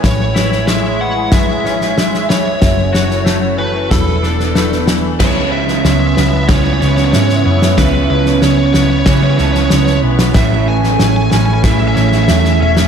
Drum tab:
CC |----------------|----------------|x---------------|----------------|
SD |o-ooo---o-ooooo-|o-ooo---o-ooooo-|o--oo-o-o-oooo-o|o--oo-o-o-oooo-o|
BD |o-------o-------|o-------o-------|o-------o-------|o-------o-------|

CC |----------------|
SD |o--oo-o-o-oooo-o|
BD |o-------o-------|